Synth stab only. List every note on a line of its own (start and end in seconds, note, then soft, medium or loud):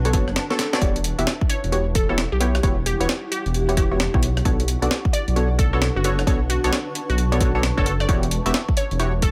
0.05 0.12 B3 medium
0.05 0.12 D4 medium
0.05 0.12 F#4 medium
0.05 0.12 A4 medium
0.05 0.12 C#5 loud
0.13 0.31 B3 medium
0.13 0.31 D4 medium
0.13 0.31 F#4 medium
0.13 0.31 A4 medium
0.13 0.31 C#5 loud
0.50 0.58 B3 medium
0.50 0.58 D4 medium
0.50 0.58 F#4 medium
0.50 0.58 A4 medium
0.50 0.58 C#5 medium
0.73 0.80 B3 medium
0.73 0.80 D4 medium
0.73 0.80 F#4 medium
0.73 0.80 A4 medium
0.73 0.80 C#5 medium
0.81 0.99 B3 medium
0.81 1.00 E4 medium
0.81 1.00 F#4 medium
0.81 1.00 G4 medium
0.81 1.00 C#5 medium
1.18 1.33 B3 medium
1.18 1.33 E4 medium
1.18 1.33 F#4 medium
1.18 1.33 G4 medium
1.18 1.33 E5 loud
1.72 1.85 B3 medium
1.72 1.85 E4 medium
1.72 1.85 F#4 medium
1.72 1.85 G4 medium
1.72 1.85 C#5 medium
2.09 2.24 B3 medium
2.09 2.24 E4 medium
2.09 2.24 F#4 medium
2.09 2.24 G4 medium
2.09 2.24 C#5 medium
2.40 2.59 B3 medium
2.40 2.59 E4 medium
2.40 2.59 F#4 medium
2.40 2.59 G4 medium
2.40 2.59 C#5 medium
2.63 2.76 B3 medium
2.63 2.76 E4 medium
2.63 2.76 F#4 medium
2.63 2.76 G4 medium
2.63 2.76 C#5 loud
3.00 3.15 B3 medium
3.00 3.15 E4 medium
3.00 3.15 F#4 medium
3.00 3.15 G4 medium
3.00 3.15 C#5 loud
3.69 3.76 B3 medium
3.69 3.76 E4 medium
3.69 3.76 F#4 medium
3.69 3.76 G4 medium
3.69 3.76 C#5 medium
3.77 3.89 B3 medium
3.77 3.89 E4 medium
3.77 3.89 F#4 medium
3.77 3.89 G4 medium
3.77 3.89 C#5 medium
3.91 3.99 B3 medium
3.91 3.99 E4 medium
3.91 3.99 F#4 medium
3.91 3.99 G4 medium
3.91 3.99 C#5 medium
4.14 4.29 B3 medium
4.14 4.29 E4 medium
4.14 4.29 F#4 medium
4.14 4.29 G4 medium
4.14 4.29 C#5 loud
4.45 4.63 B3 medium
4.45 4.63 D4 medium
4.45 4.63 F#4 medium
4.45 4.63 A4 medium
4.45 4.63 C#5 medium
4.82 4.97 B3 medium
4.82 4.97 D4 medium
4.82 4.97 F#4 medium
4.82 4.97 A4 medium
4.82 4.97 D5 medium
5.36 5.49 B3 medium
5.36 5.49 D4 medium
5.36 5.49 F#4 medium
5.36 5.49 A4 medium
5.36 5.49 C#5 medium
5.73 5.88 B3 medium
5.73 5.88 D4 medium
5.73 5.88 F#4 medium
5.73 5.88 A4 medium
5.73 5.88 C#5 medium
6.04 6.22 B3 medium
6.04 6.22 D4 medium
6.04 6.22 F#4 medium
6.04 6.22 A4 medium
6.04 6.22 C#5 medium
6.27 6.40 B3 medium
6.27 6.40 D4 medium
6.27 6.40 F#4 medium
6.27 6.40 A4 medium
6.27 6.40 C#5 loud
6.64 6.79 B3 medium
6.64 6.79 D4 medium
6.64 6.79 F#4 medium
6.64 6.79 A4 medium
6.64 6.79 C#5 loud
7.32 7.39 B3 medium
7.32 7.39 D4 medium
7.32 7.39 F#4 medium
7.32 7.39 A4 medium
7.32 7.39 C#5 loud
7.41 7.53 B3 medium
7.41 7.53 D4 medium
7.41 7.53 F#4 medium
7.41 7.53 A4 medium
7.41 7.53 C#5 medium
7.55 7.62 B3 medium
7.55 7.62 D4 medium
7.55 7.62 F#4 medium
7.55 7.62 A4 medium
7.55 7.62 C#5 medium
7.77 7.92 B3 medium
7.77 7.92 D4 medium
7.77 7.92 F#4 medium
7.77 7.92 A4 medium
7.77 7.92 C#5 loud
8.09 8.27 B3 medium
8.09 8.27 E4 medium
8.09 8.27 F#4 medium
8.09 8.27 G4 medium
8.09 8.27 C#5 medium
8.46 8.60 B3 medium
8.46 8.60 E4 medium
8.46 8.60 F#4 medium
8.46 8.60 G4 medium
8.46 8.60 E5 loud
9.00 9.12 B3 medium
9.00 9.12 E4 medium
9.00 9.13 F#4 medium
9.00 9.12 G4 medium
9.00 9.12 C#5 medium